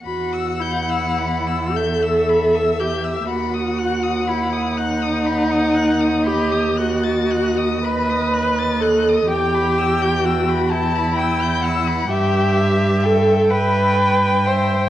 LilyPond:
<<
  \new Staff \with { instrumentName = "Violin" } { \time 6/8 \key e \minor \tempo 4. = 41 b''16 e'''16 g'''16 e'''16 b''16 e'''16 g'''16 e'''16 b''16 e'''16 g'''16 e'''16 | b''16 dis'''16 fis'''16 dis'''16 b''16 dis'''16 fis'''16 dis'''16 b''16 dis'''16 fis'''16 dis'''16 | b''16 dis'''16 fis'''16 a'''16 fis'''16 dis'''16 b''16 dis'''16 fis'''16 a'''16 fis'''16 dis'''16 | g''16 b''16 e'''16 g'''16 e'''16 b''16 g''16 b''16 e'''16 g'''16 e'''16 b''16 |
g''8 e''8 g''8 e''8 g''8 e''8 | }
  \new Staff \with { instrumentName = "Violin" } { \time 6/8 \key e \minor fis''4. e''4. | fis''4. fis''4. | dis''2. | g''4. a''8 g''8 fis''8 |
e''4. g''4. | }
  \new Staff \with { instrumentName = "Viola" } { \time 6/8 \key e \minor fis'8 e'4 a'4 g'8 | fis'4 e'8 dis'4. | g'8 fis'4 b'4 a'8 | g'4 fis'8 e'4. |
g'4 a'8 b'4 c''8 | }
  \new Staff \with { instrumentName = "Cello" } { \clef bass \time 6/8 \key e \minor e,2. | dis,2.~ | dis,2. | e,2. |
g,4. g,4. | }
>>